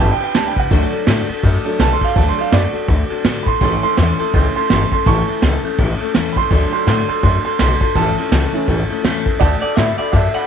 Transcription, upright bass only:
0, 0, Header, 1, 3, 480
1, 0, Start_track
1, 0, Key_signature, 2, "major"
1, 0, Tempo, 362319
1, 942, Time_signature, 4, 2, 24, 8
1, 13869, End_track
2, 0, Start_track
2, 0, Title_t, "Upright bass"
2, 0, Program_c, 0, 32
2, 0, Note_on_c, 0, 31, 105
2, 157, Note_off_c, 0, 31, 0
2, 456, Note_on_c, 0, 38, 99
2, 636, Note_off_c, 0, 38, 0
2, 750, Note_on_c, 0, 37, 93
2, 870, Note_off_c, 0, 37, 0
2, 941, Note_on_c, 0, 38, 103
2, 1120, Note_off_c, 0, 38, 0
2, 1416, Note_on_c, 0, 45, 100
2, 1597, Note_off_c, 0, 45, 0
2, 1899, Note_on_c, 0, 42, 100
2, 2079, Note_off_c, 0, 42, 0
2, 2371, Note_on_c, 0, 35, 109
2, 2553, Note_off_c, 0, 35, 0
2, 2862, Note_on_c, 0, 38, 100
2, 3040, Note_off_c, 0, 38, 0
2, 3338, Note_on_c, 0, 42, 92
2, 3518, Note_off_c, 0, 42, 0
2, 3820, Note_on_c, 0, 38, 104
2, 3999, Note_off_c, 0, 38, 0
2, 4297, Note_on_c, 0, 45, 94
2, 4477, Note_off_c, 0, 45, 0
2, 4587, Note_on_c, 0, 45, 91
2, 4709, Note_off_c, 0, 45, 0
2, 4784, Note_on_c, 0, 33, 102
2, 4962, Note_off_c, 0, 33, 0
2, 5269, Note_on_c, 0, 40, 90
2, 5446, Note_off_c, 0, 40, 0
2, 5746, Note_on_c, 0, 37, 99
2, 5924, Note_off_c, 0, 37, 0
2, 6229, Note_on_c, 0, 31, 95
2, 6406, Note_off_c, 0, 31, 0
2, 6710, Note_on_c, 0, 33, 109
2, 6887, Note_off_c, 0, 33, 0
2, 7183, Note_on_c, 0, 37, 105
2, 7362, Note_off_c, 0, 37, 0
2, 7666, Note_on_c, 0, 33, 103
2, 7845, Note_off_c, 0, 33, 0
2, 8153, Note_on_c, 0, 40, 94
2, 8329, Note_off_c, 0, 40, 0
2, 8429, Note_on_c, 0, 40, 93
2, 8551, Note_off_c, 0, 40, 0
2, 8622, Note_on_c, 0, 38, 104
2, 8802, Note_off_c, 0, 38, 0
2, 9098, Note_on_c, 0, 45, 100
2, 9279, Note_off_c, 0, 45, 0
2, 9578, Note_on_c, 0, 42, 116
2, 9759, Note_off_c, 0, 42, 0
2, 10065, Note_on_c, 0, 35, 103
2, 10243, Note_off_c, 0, 35, 0
2, 10536, Note_on_c, 0, 33, 101
2, 10717, Note_off_c, 0, 33, 0
2, 11015, Note_on_c, 0, 37, 92
2, 11196, Note_off_c, 0, 37, 0
2, 11497, Note_on_c, 0, 33, 109
2, 11677, Note_off_c, 0, 33, 0
2, 11972, Note_on_c, 0, 40, 98
2, 12154, Note_off_c, 0, 40, 0
2, 12264, Note_on_c, 0, 40, 95
2, 12386, Note_off_c, 0, 40, 0
2, 12459, Note_on_c, 0, 38, 105
2, 12638, Note_off_c, 0, 38, 0
2, 12946, Note_on_c, 0, 45, 86
2, 13123, Note_off_c, 0, 45, 0
2, 13419, Note_on_c, 0, 42, 100
2, 13598, Note_off_c, 0, 42, 0
2, 13869, End_track
3, 0, Start_track
3, 0, Title_t, "Muted upright bass strokes"
3, 266, Note_on_c, 9, 29, 66
3, 398, Note_off_c, 9, 29, 0
3, 1228, Note_on_c, 9, 29, 70
3, 1360, Note_off_c, 9, 29, 0
3, 1706, Note_on_c, 9, 29, 77
3, 1838, Note_off_c, 9, 29, 0
3, 2183, Note_on_c, 9, 29, 73
3, 2315, Note_off_c, 9, 29, 0
3, 2667, Note_on_c, 9, 29, 70
3, 2800, Note_off_c, 9, 29, 0
3, 3623, Note_on_c, 9, 29, 78
3, 3755, Note_off_c, 9, 29, 0
3, 4105, Note_on_c, 9, 29, 75
3, 4237, Note_off_c, 9, 29, 0
3, 5072, Note_on_c, 9, 29, 69
3, 5205, Note_off_c, 9, 29, 0
3, 5556, Note_on_c, 9, 29, 71
3, 5689, Note_off_c, 9, 29, 0
3, 6033, Note_on_c, 9, 29, 67
3, 6166, Note_off_c, 9, 29, 0
3, 6513, Note_on_c, 9, 29, 77
3, 6646, Note_off_c, 9, 29, 0
3, 6999, Note_on_c, 9, 29, 73
3, 7131, Note_off_c, 9, 29, 0
3, 7954, Note_on_c, 9, 29, 66
3, 8087, Note_off_c, 9, 29, 0
3, 8906, Note_on_c, 9, 29, 78
3, 9038, Note_off_c, 9, 29, 0
3, 9391, Note_on_c, 9, 29, 77
3, 9523, Note_off_c, 9, 29, 0
3, 9870, Note_on_c, 9, 29, 77
3, 10003, Note_off_c, 9, 29, 0
3, 10821, Note_on_c, 9, 29, 73
3, 10954, Note_off_c, 9, 29, 0
3, 11300, Note_on_c, 9, 29, 75
3, 11433, Note_off_c, 9, 29, 0
3, 11782, Note_on_c, 9, 29, 78
3, 11914, Note_off_c, 9, 29, 0
3, 12743, Note_on_c, 9, 29, 74
3, 12875, Note_off_c, 9, 29, 0
3, 13227, Note_on_c, 9, 29, 69
3, 13360, Note_off_c, 9, 29, 0
3, 13705, Note_on_c, 9, 29, 75
3, 13838, Note_off_c, 9, 29, 0
3, 13869, End_track
0, 0, End_of_file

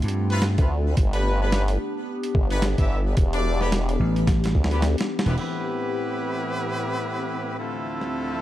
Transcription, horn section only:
0, 0, Header, 1, 2, 480
1, 0, Start_track
1, 0, Key_signature, 0, "minor"
1, 0, Tempo, 550459
1, 847, Time_signature, 4, 2, 24, 8
1, 7338, End_track
2, 0, Start_track
2, 0, Title_t, "Horn section"
2, 0, Program_c, 0, 61
2, 268, Note_on_c, 0, 59, 102
2, 268, Note_on_c, 0, 60, 96
2, 268, Note_on_c, 0, 71, 111
2, 269, Note_on_c, 0, 64, 90
2, 270, Note_on_c, 0, 65, 90
2, 366, Note_off_c, 0, 59, 0
2, 366, Note_off_c, 0, 60, 0
2, 366, Note_off_c, 0, 64, 0
2, 366, Note_off_c, 0, 71, 0
2, 367, Note_off_c, 0, 65, 0
2, 508, Note_on_c, 0, 60, 76
2, 509, Note_on_c, 0, 64, 67
2, 510, Note_on_c, 0, 59, 74
2, 510, Note_on_c, 0, 65, 68
2, 510, Note_on_c, 0, 71, 81
2, 605, Note_off_c, 0, 60, 0
2, 606, Note_off_c, 0, 64, 0
2, 606, Note_off_c, 0, 65, 0
2, 607, Note_off_c, 0, 59, 0
2, 607, Note_off_c, 0, 71, 0
2, 986, Note_on_c, 0, 67, 83
2, 986, Note_on_c, 0, 71, 103
2, 987, Note_on_c, 0, 59, 91
2, 987, Note_on_c, 0, 62, 82
2, 1193, Note_off_c, 0, 59, 0
2, 1193, Note_off_c, 0, 62, 0
2, 1193, Note_off_c, 0, 67, 0
2, 1193, Note_off_c, 0, 71, 0
2, 1229, Note_on_c, 0, 59, 78
2, 1229, Note_on_c, 0, 62, 71
2, 1229, Note_on_c, 0, 67, 73
2, 1230, Note_on_c, 0, 71, 86
2, 1408, Note_off_c, 0, 59, 0
2, 1408, Note_off_c, 0, 62, 0
2, 1408, Note_off_c, 0, 67, 0
2, 1408, Note_off_c, 0, 71, 0
2, 2185, Note_on_c, 0, 62, 94
2, 2185, Note_on_c, 0, 71, 112
2, 2186, Note_on_c, 0, 59, 100
2, 2186, Note_on_c, 0, 67, 93
2, 2284, Note_off_c, 0, 62, 0
2, 2284, Note_off_c, 0, 67, 0
2, 2284, Note_off_c, 0, 71, 0
2, 2285, Note_off_c, 0, 59, 0
2, 2423, Note_on_c, 0, 62, 73
2, 2423, Note_on_c, 0, 67, 75
2, 2424, Note_on_c, 0, 64, 84
2, 2424, Note_on_c, 0, 76, 91
2, 2425, Note_on_c, 0, 59, 80
2, 2605, Note_off_c, 0, 62, 0
2, 2605, Note_off_c, 0, 64, 0
2, 2605, Note_off_c, 0, 67, 0
2, 2605, Note_off_c, 0, 76, 0
2, 2606, Note_off_c, 0, 59, 0
2, 2907, Note_on_c, 0, 64, 89
2, 2907, Note_on_c, 0, 67, 89
2, 2907, Note_on_c, 0, 74, 109
2, 2908, Note_on_c, 0, 62, 98
2, 3113, Note_off_c, 0, 64, 0
2, 3113, Note_off_c, 0, 74, 0
2, 3114, Note_off_c, 0, 62, 0
2, 3114, Note_off_c, 0, 67, 0
2, 3143, Note_on_c, 0, 64, 84
2, 3144, Note_on_c, 0, 59, 93
2, 3144, Note_on_c, 0, 62, 91
2, 3144, Note_on_c, 0, 67, 86
2, 3144, Note_on_c, 0, 71, 101
2, 3243, Note_off_c, 0, 64, 0
2, 3244, Note_off_c, 0, 59, 0
2, 3244, Note_off_c, 0, 62, 0
2, 3244, Note_off_c, 0, 67, 0
2, 3244, Note_off_c, 0, 71, 0
2, 4106, Note_on_c, 0, 62, 77
2, 4107, Note_on_c, 0, 59, 79
2, 4107, Note_on_c, 0, 64, 70
2, 4107, Note_on_c, 0, 67, 73
2, 4107, Note_on_c, 0, 71, 86
2, 4205, Note_off_c, 0, 59, 0
2, 4205, Note_off_c, 0, 62, 0
2, 4205, Note_off_c, 0, 64, 0
2, 4205, Note_off_c, 0, 67, 0
2, 4205, Note_off_c, 0, 71, 0
2, 4586, Note_on_c, 0, 59, 77
2, 4586, Note_on_c, 0, 60, 78
2, 4586, Note_on_c, 0, 71, 84
2, 4587, Note_on_c, 0, 64, 73
2, 4587, Note_on_c, 0, 67, 69
2, 4674, Note_off_c, 0, 64, 0
2, 4674, Note_off_c, 0, 67, 0
2, 4675, Note_off_c, 0, 59, 0
2, 4675, Note_off_c, 0, 60, 0
2, 4675, Note_off_c, 0, 71, 0
2, 4685, Note_on_c, 0, 45, 79
2, 4685, Note_on_c, 0, 59, 81
2, 4685, Note_on_c, 0, 60, 72
2, 4685, Note_on_c, 0, 64, 70
2, 4685, Note_on_c, 0, 67, 75
2, 4685, Note_on_c, 0, 71, 88
2, 6582, Note_off_c, 0, 45, 0
2, 6582, Note_off_c, 0, 59, 0
2, 6582, Note_off_c, 0, 60, 0
2, 6582, Note_off_c, 0, 64, 0
2, 6582, Note_off_c, 0, 67, 0
2, 6582, Note_off_c, 0, 71, 0
2, 6606, Note_on_c, 0, 65, 75
2, 6607, Note_on_c, 0, 50, 83
2, 6607, Note_on_c, 0, 57, 81
2, 6607, Note_on_c, 0, 64, 73
2, 6607, Note_on_c, 0, 69, 88
2, 6609, Note_on_c, 0, 60, 76
2, 7338, Note_off_c, 0, 50, 0
2, 7338, Note_off_c, 0, 57, 0
2, 7338, Note_off_c, 0, 60, 0
2, 7338, Note_off_c, 0, 64, 0
2, 7338, Note_off_c, 0, 65, 0
2, 7338, Note_off_c, 0, 69, 0
2, 7338, End_track
0, 0, End_of_file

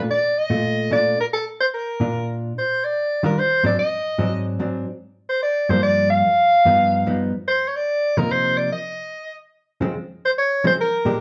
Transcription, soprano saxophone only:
0, 0, Header, 1, 2, 480
1, 0, Start_track
1, 0, Key_signature, -3, "major"
1, 0, Tempo, 410959
1, 100, Time_signature, 3, 2, 24, 8
1, 13090, End_track
2, 0, Start_track
2, 0, Title_t, "Soprano saxophone"
2, 0, Program_c, 0, 64
2, 123, Note_on_c, 0, 74, 90
2, 445, Note_on_c, 0, 75, 98
2, 462, Note_off_c, 0, 74, 0
2, 1071, Note_off_c, 0, 75, 0
2, 1079, Note_on_c, 0, 74, 91
2, 1368, Note_off_c, 0, 74, 0
2, 1404, Note_on_c, 0, 70, 69
2, 1470, Note_off_c, 0, 70, 0
2, 1556, Note_on_c, 0, 69, 78
2, 1696, Note_off_c, 0, 69, 0
2, 1872, Note_on_c, 0, 72, 81
2, 1940, Note_off_c, 0, 72, 0
2, 2035, Note_on_c, 0, 70, 73
2, 2779, Note_off_c, 0, 70, 0
2, 3017, Note_on_c, 0, 72, 80
2, 3324, Note_on_c, 0, 74, 90
2, 3341, Note_off_c, 0, 72, 0
2, 3789, Note_off_c, 0, 74, 0
2, 3802, Note_on_c, 0, 70, 82
2, 3954, Note_on_c, 0, 72, 96
2, 3972, Note_off_c, 0, 70, 0
2, 4265, Note_off_c, 0, 72, 0
2, 4273, Note_on_c, 0, 74, 88
2, 4412, Note_off_c, 0, 74, 0
2, 4426, Note_on_c, 0, 75, 96
2, 5173, Note_off_c, 0, 75, 0
2, 6183, Note_on_c, 0, 72, 85
2, 6326, Note_off_c, 0, 72, 0
2, 6336, Note_on_c, 0, 74, 90
2, 6656, Note_on_c, 0, 72, 89
2, 6673, Note_off_c, 0, 74, 0
2, 6800, Note_off_c, 0, 72, 0
2, 6807, Note_on_c, 0, 74, 103
2, 7107, Note_off_c, 0, 74, 0
2, 7128, Note_on_c, 0, 77, 109
2, 8524, Note_off_c, 0, 77, 0
2, 8732, Note_on_c, 0, 72, 88
2, 8969, Note_on_c, 0, 73, 64
2, 8987, Note_off_c, 0, 72, 0
2, 9066, Note_on_c, 0, 74, 91
2, 9084, Note_off_c, 0, 73, 0
2, 9547, Note_on_c, 0, 70, 81
2, 9565, Note_off_c, 0, 74, 0
2, 9709, Note_on_c, 0, 72, 89
2, 9727, Note_off_c, 0, 70, 0
2, 10016, Note_on_c, 0, 74, 81
2, 10033, Note_off_c, 0, 72, 0
2, 10175, Note_off_c, 0, 74, 0
2, 10188, Note_on_c, 0, 75, 83
2, 10938, Note_off_c, 0, 75, 0
2, 11974, Note_on_c, 0, 72, 80
2, 12038, Note_off_c, 0, 72, 0
2, 12127, Note_on_c, 0, 73, 86
2, 12415, Note_off_c, 0, 73, 0
2, 12461, Note_on_c, 0, 72, 88
2, 12524, Note_off_c, 0, 72, 0
2, 12619, Note_on_c, 0, 70, 89
2, 13050, Note_off_c, 0, 70, 0
2, 13090, End_track
0, 0, End_of_file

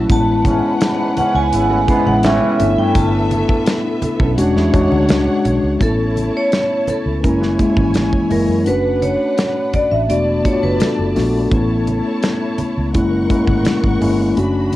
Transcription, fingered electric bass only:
0, 0, Header, 1, 3, 480
1, 0, Start_track
1, 0, Key_signature, 3, "major"
1, 0, Tempo, 713436
1, 68, Time_signature, 4, 2, 24, 8
1, 9929, End_track
2, 0, Start_track
2, 0, Title_t, "Fingered electric bass"
2, 0, Program_c, 0, 33
2, 66, Note_on_c, 0, 33, 99
2, 390, Note_off_c, 0, 33, 0
2, 905, Note_on_c, 0, 37, 92
2, 1014, Note_off_c, 0, 37, 0
2, 1025, Note_on_c, 0, 32, 93
2, 1242, Note_off_c, 0, 32, 0
2, 1386, Note_on_c, 0, 33, 89
2, 1602, Note_off_c, 0, 33, 0
2, 1747, Note_on_c, 0, 31, 93
2, 1855, Note_off_c, 0, 31, 0
2, 1867, Note_on_c, 0, 43, 94
2, 1975, Note_off_c, 0, 43, 0
2, 1987, Note_on_c, 0, 31, 101
2, 2310, Note_off_c, 0, 31, 0
2, 2825, Note_on_c, 0, 35, 92
2, 2934, Note_off_c, 0, 35, 0
2, 2950, Note_on_c, 0, 28, 99
2, 3056, Note_off_c, 0, 28, 0
2, 3070, Note_on_c, 0, 40, 100
2, 3176, Note_off_c, 0, 40, 0
2, 3189, Note_on_c, 0, 40, 84
2, 3296, Note_off_c, 0, 40, 0
2, 3310, Note_on_c, 0, 38, 91
2, 3416, Note_off_c, 0, 38, 0
2, 3432, Note_on_c, 0, 37, 86
2, 3537, Note_off_c, 0, 37, 0
2, 3669, Note_on_c, 0, 35, 85
2, 3776, Note_off_c, 0, 35, 0
2, 3788, Note_on_c, 0, 37, 80
2, 3895, Note_off_c, 0, 37, 0
2, 3907, Note_on_c, 0, 33, 93
2, 4230, Note_off_c, 0, 33, 0
2, 4748, Note_on_c, 0, 37, 70
2, 4872, Note_on_c, 0, 30, 89
2, 4882, Note_off_c, 0, 37, 0
2, 5086, Note_off_c, 0, 30, 0
2, 5228, Note_on_c, 0, 32, 83
2, 5443, Note_off_c, 0, 32, 0
2, 5591, Note_on_c, 0, 30, 83
2, 5698, Note_off_c, 0, 30, 0
2, 5709, Note_on_c, 0, 42, 86
2, 5816, Note_off_c, 0, 42, 0
2, 5831, Note_on_c, 0, 30, 92
2, 6153, Note_off_c, 0, 30, 0
2, 6670, Note_on_c, 0, 33, 85
2, 6777, Note_off_c, 0, 33, 0
2, 6793, Note_on_c, 0, 28, 96
2, 7007, Note_off_c, 0, 28, 0
2, 7153, Note_on_c, 0, 30, 88
2, 7259, Note_off_c, 0, 30, 0
2, 7392, Note_on_c, 0, 30, 83
2, 7498, Note_off_c, 0, 30, 0
2, 7509, Note_on_c, 0, 34, 97
2, 7724, Note_off_c, 0, 34, 0
2, 7748, Note_on_c, 0, 33, 105
2, 8072, Note_off_c, 0, 33, 0
2, 8595, Note_on_c, 0, 37, 82
2, 8713, Note_on_c, 0, 30, 96
2, 8723, Note_off_c, 0, 37, 0
2, 8926, Note_off_c, 0, 30, 0
2, 9067, Note_on_c, 0, 32, 81
2, 9176, Note_off_c, 0, 32, 0
2, 9309, Note_on_c, 0, 32, 83
2, 9417, Note_off_c, 0, 32, 0
2, 9429, Note_on_c, 0, 31, 82
2, 9644, Note_off_c, 0, 31, 0
2, 9670, Note_on_c, 0, 30, 96
2, 9929, Note_off_c, 0, 30, 0
2, 9929, End_track
3, 0, Start_track
3, 0, Title_t, "Muted fingered electric bass strokes"
3, 785, Note_on_c, 9, 29, 47
3, 852, Note_off_c, 9, 29, 0
3, 2708, Note_on_c, 9, 29, 46
3, 2775, Note_off_c, 9, 29, 0
3, 4629, Note_on_c, 9, 29, 43
3, 4696, Note_off_c, 9, 29, 0
3, 6551, Note_on_c, 9, 29, 41
3, 6618, Note_off_c, 9, 29, 0
3, 8472, Note_on_c, 9, 29, 43
3, 8540, Note_off_c, 9, 29, 0
3, 9929, End_track
0, 0, End_of_file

